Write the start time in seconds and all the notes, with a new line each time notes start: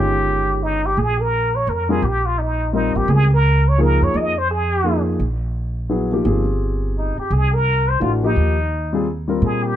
Already playing: G1 D#3 G#3 C#4 F4 G4
0.63 D#4
0.86 G4
0.97 A#1 G#4
1.21 A#4
1.56 C#5
1.67 F2 A#4
1.89 G3 C4 F4 G#4 A#4
2.02 A#1 G4
2.26 F4
2.38 D#4
2.73 G3 C4 D#4 F4 A#4
2.95 A1 G4
3.08 C#2 G#4
3.34 A#4
3.69 C#5
3.78 F3 A#3 D#4 G#4 A#4
4.02 F2 C#5
4.14 F2 D#5
4.38 C5
4.51 G#4
4.84 F3 A#3 D#4 G#4
5.19 A#1
5.89 F#3 B3 E4 G#4
6.12 F3 A#3 D#4 G4
6.25 G1 C4 F4 G4 G#4
6.98 D#4
7.18 G4, muted upright bass stroke
7.30 C2 G#4
7.54 A#4
7.90 C5
8.00 A1 E3 A3 D4 F4 F#4
8.23 F3 A#3 D#4 G4
8.36 D#2
8.93 G3 C4 F4 G#4
9.28 G3 C4 F4 A#4
9.42 A#2 G#4
9.65 G4